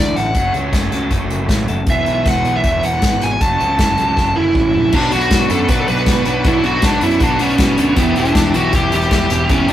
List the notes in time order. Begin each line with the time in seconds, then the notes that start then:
Already playing: D2 A2 D3 E3 A3 D4 E4 A4 D5
0.16 A1 A4 F#5, snare, closed hi-hat
0.34 F#1 F#2 C#3 F#3 A3 C#4 F#4, kick, closed hi-hat
0.54 C#2, closed hi-hat
0.72 F#1 A3, kick, snare, closed hi-hat
0.92 C#2 A4, closed hi-hat
1.10 F#1 C#4, kick, closed hi-hat
1.30 F#1 F#3, closed hi-hat
1.49 A1 A3, kick, snare, closed hi-hat
1.68 F#1 A4, closed hi-hat
1.87 E1 E2 B2 E3 F#3 G#3 B3 G#4 E5, kick, closed hi-hat
2.06 B1, closed hi-hat
2.26 E1 B3 F#5, kick, snare, closed hi-hat
2.45 B1 G#4, closed hi-hat
2.56 E5
2.63 E1 E4, kick, closed hi-hat
2.83 E1 F#3 F#5, closed hi-hat
3.02 G#1 B3, kick, snare, closed hi-hat
3.21 G#1 G#4 G#5, snare, closed hi-hat
3.41 F#1 F#2 C#3 F#3 A3 C#4 F#4 A5, kick, closed hi-hat
3.60 C#2, closed hi-hat
3.79 F#1 C#4, kick, snare, closed hi-hat
3.98 C#2 A4, closed hi-hat
4.17 F#1 E4, kick, snare
4.36 F#1 C#4 E4, high tom
4.55 A1 C#4, kick, mid tom
4.73 A#1 A4, floor tom
4.92 B1 B2 F#3 B3 D4 F#4 B4 B5 D6, kick, crash
5.12 B1 B2 F#3 B3 D4 F#4, closed hi-hat
5.21 closed hi-hat
5.31 B1 B2 F#3 B3 D4 F#4, kick, snare, closed hi-hat
5.50 F#2 B2 F#3 B3 D4 F#4 A4, closed hi-hat
5.68 B1 B2 F#3 B3 D4 F#4 B4, kick, closed hi-hat
5.81 A4
5.88 B1 B2 F#3 B3 D4 F#4 B4, closed hi-hat
5.97 closed hi-hat
6.06 B2 F#3 B3 D4 F#4, kick, snare, closed hi-hat
6.25 B1 B2 F#3 B3 D4 F#4, closed hi-hat
6.44 B1 B2 F#3 B3 D4 E4 F#4, kick, closed hi-hat
6.64 B1 B2 F#3 B3 D4 F#4, closed hi-hat
6.82 B1 B2 F#3 B3 D4 F#4, kick, snare, closed hi-hat
7.01 F#2 B2 F#3 B3 D4 E4 F#4, closed hi-hat
7.11 closed hi-hat
7.20 B1 B2 F#3 B3 D4 F#4, kick, closed hi-hat
7.39 B1 B2 F#3 B3 C#4 D4 F#4, closed hi-hat
7.49 closed hi-hat
7.58 B2 F#3 B3 D4 F#4, kick, snare, closed hi-hat
7.77 D2 B2 F#3 B3 D4 F#4, closed hi-hat
7.96 E1 E2 B2 E3 G3 B3 E4 G4 E5, kick, closed hi-hat
8.15 E1 E2 B2 E3 G3 B3 D4 E4 G4, closed hi-hat
8.25 closed hi-hat
8.35 E1 E2 B2 E3 G3 B3 E4 G4, kick, snare, closed hi-hat
8.54 B1 E2 B2 E3 G3 B3 E4 F#4 G4, closed hi-hat
8.73 E1 E2 B2 E3 G3 B3 E4 G4, kick, closed hi-hat
8.92 E1 E2 B2 E3 G3 B3 E4 G4, closed hi-hat
9.01 closed hi-hat
9.11 E2 B2 E3 G3 B3 E4 G4, kick, snare, closed hi-hat
9.29 E1 E2 B2 E3 G3 B3 E4 G4, closed hi-hat
9.49 E1 E2 B2 E3 G3 B3 C#4 E4 G4, kick, closed hi-hat
9.68 E1 E2 B2 E3 B3 D4, closed hi-hat